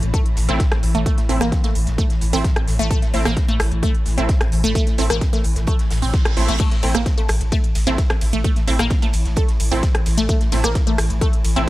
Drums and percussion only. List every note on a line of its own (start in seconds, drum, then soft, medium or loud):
0.03 closed hi-hat medium
0.14 kick loud
0.14 closed hi-hat medium
0.26 closed hi-hat medium
0.36 snare medium
0.36 closed hi-hat medium
0.36 open hi-hat loud
0.49 closed hi-hat medium
0.59 kick loud
0.59 snare loud
0.59 closed hi-hat medium
0.72 cross-stick medium
0.72 snare soft
0.72 closed hi-hat medium
0.83 closed hi-hat medium
0.83 open hi-hat loud
0.95 closed hi-hat soft
1.06 kick loud
1.06 closed hi-hat medium
1.18 snare soft
1.18 closed hi-hat medium
1.29 closed hi-hat medium
1.29 open hi-hat medium
1.40 cross-stick medium
1.40 snare soft
1.40 closed hi-hat soft
1.52 kick loud
1.52 snare loud
1.52 closed hi-hat medium
1.64 snare medium
1.64 closed hi-hat medium
1.75 closed hi-hat medium
1.75 open hi-hat loud
1.87 snare soft
1.87 closed hi-hat medium
1.98 kick loud
1.98 closed hi-hat medium
2.10 snare soft
2.10 closed hi-hat medium
2.21 closed hi-hat medium
2.21 open hi-hat loud
2.33 open hi-hat medium
2.44 kick loud
2.44 snare loud
2.44 closed hi-hat medium
2.44 closed hi-hat loud
2.56 cross-stick medium
2.56 closed hi-hat soft
2.68 snare medium
2.68 closed hi-hat medium
2.68 open hi-hat loud
2.79 snare medium
2.79 closed hi-hat soft
2.90 kick loud
2.90 closed hi-hat medium
3.02 snare soft
3.02 closed hi-hat medium
3.14 open hi-hat loud
3.14 open hi-hat medium
3.25 cross-stick medium
3.25 closed hi-hat medium
3.36 kick loud
3.36 snare loud
3.36 closed hi-hat medium
3.49 closed hi-hat medium
3.60 cross-stick loud
3.60 closed hi-hat medium
3.60 open hi-hat loud
3.72 closed hi-hat medium
3.83 kick loud
3.83 closed hi-hat medium
3.95 closed hi-hat medium
4.06 snare medium
4.06 closed hi-hat medium
4.06 open hi-hat loud
4.18 closed hi-hat medium
4.29 kick loud
4.29 snare loud
4.29 closed hi-hat medium
4.41 cross-stick medium
4.41 snare soft
4.41 closed hi-hat soft
4.52 closed hi-hat medium
4.52 open hi-hat loud
4.64 closed hi-hat medium
4.75 kick loud
4.75 closed hi-hat medium
4.87 snare soft
4.87 closed hi-hat medium
4.98 closed hi-hat medium
4.98 open hi-hat loud
5.10 cross-stick medium
5.10 snare soft
5.10 closed hi-hat medium
5.21 kick loud
5.21 snare loud
5.21 closed hi-hat medium
5.33 snare soft
5.33 closed hi-hat medium
5.44 closed hi-hat medium
5.44 open hi-hat loud
5.56 snare soft
5.56 closed hi-hat medium
5.67 kick loud
5.67 closed hi-hat medium
5.79 snare soft
5.79 closed hi-hat medium
5.91 snare loud
5.91 closed hi-hat medium
5.91 open hi-hat loud
6.02 open hi-hat medium
6.13 kick loud
6.13 snare loud
6.13 closed hi-hat loud
6.13 closed hi-hat medium
6.25 cross-stick medium
6.25 closed hi-hat medium
6.37 snare medium
6.37 closed hi-hat medium
6.37 open hi-hat loud
6.48 snare medium
6.48 closed hi-hat medium
6.60 kick loud
6.60 closed hi-hat medium
6.60 crash medium
6.60 ride medium
6.72 snare medium
6.72 closed hi-hat medium
6.82 open hi-hat medium
6.82 open hi-hat loud
6.82 ride medium
6.95 cross-stick medium
6.95 closed hi-hat medium
7.06 kick loud
7.06 snare loud
7.06 closed hi-hat medium
7.06 ride medium
7.18 closed hi-hat medium
7.28 cross-stick medium
7.28 closed hi-hat medium
7.28 open hi-hat loud
7.28 ride medium
7.41 closed hi-hat medium
7.52 kick loud
7.52 closed hi-hat medium
7.52 ride medium
7.64 closed hi-hat medium
7.75 snare medium
7.75 closed hi-hat medium
7.75 open hi-hat loud
7.75 ride medium
7.87 closed hi-hat medium
7.98 kick loud
7.98 snare loud
7.98 closed hi-hat medium
7.98 ride medium
8.10 cross-stick loud
8.10 snare soft
8.10 closed hi-hat medium
8.21 closed hi-hat medium
8.21 open hi-hat loud
8.21 ride medium
8.33 closed hi-hat medium
8.44 kick loud
8.44 closed hi-hat medium
8.44 ride medium
8.56 snare soft
8.56 closed hi-hat medium
8.68 closed hi-hat medium
8.68 open hi-hat loud
8.68 ride medium
8.79 cross-stick medium
8.79 snare soft
8.79 closed hi-hat medium
8.90 kick loud
8.90 snare loud
8.90 closed hi-hat medium
8.90 ride medium
9.02 snare soft
9.02 closed hi-hat medium
9.13 closed hi-hat medium
9.13 open hi-hat loud
9.13 ride medium
9.25 snare medium
9.25 closed hi-hat medium
9.36 kick loud
9.36 closed hi-hat loud
9.36 closed hi-hat medium
9.36 ride medium
9.49 snare soft
9.49 closed hi-hat medium
9.60 closed hi-hat medium
9.60 open hi-hat loud
9.60 ride medium
9.72 open hi-hat medium
9.83 kick loud
9.83 snare loud
9.83 closed hi-hat medium
9.83 ride medium
9.95 cross-stick medium
9.95 closed hi-hat medium
10.06 snare medium
10.06 closed hi-hat medium
10.06 open hi-hat loud
10.06 ride medium
10.17 snare soft
10.17 closed hi-hat medium
10.29 kick loud
10.29 closed hi-hat medium
10.29 ride medium
10.41 snare soft
10.41 closed hi-hat medium
10.52 open hi-hat medium
10.52 open hi-hat loud
10.52 ride medium
10.64 cross-stick medium
10.64 closed hi-hat medium
10.75 kick loud
10.75 snare loud
10.75 closed hi-hat medium
10.75 ride medium
10.87 closed hi-hat medium
10.98 cross-stick medium
10.98 closed hi-hat medium
10.98 open hi-hat loud
10.98 ride medium
11.10 closed hi-hat medium
11.21 kick loud
11.21 closed hi-hat medium
11.21 ride medium
11.33 closed hi-hat medium
11.44 snare medium
11.44 closed hi-hat medium
11.44 open hi-hat loud
11.44 ride medium
11.56 closed hi-hat medium